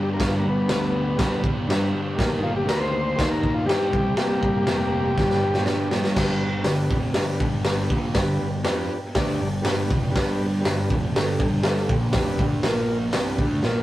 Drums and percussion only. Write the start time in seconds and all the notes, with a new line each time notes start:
0.20 kick, snare, crash
0.69 snare, crash
1.19 kick, snare, crash
1.44 kick
1.70 snare, crash
2.19 kick, snare, crash
2.69 snare, crash
3.19 kick, snare, crash
3.43 kick
3.69 snare, crash
3.93 kick
4.17 snare, crash
4.43 kick
4.67 snare, crash
5.18 kick, snare
5.30 snare
5.54 snare
5.66 snare
5.91 snare
6.04 snare
6.17 kick, snare, crash
6.64 snare, open hi-hat
6.91 kick
7.14 snare, open hi-hat
7.40 kick
7.65 snare, open hi-hat
7.90 kick
8.15 kick, snare, open hi-hat
8.65 snare, open hi-hat
9.15 kick, snare, open hi-hat
9.65 snare, open hi-hat
9.91 kick
10.16 kick, snare, open hi-hat
10.65 snare, open hi-hat
10.90 kick
11.16 snare, open hi-hat
11.40 kick
11.63 snare, open hi-hat
11.89 kick
12.13 kick, snare, open hi-hat
12.39 kick
12.63 snare, open hi-hat
13.13 snare, open hi-hat
13.38 kick
13.63 snare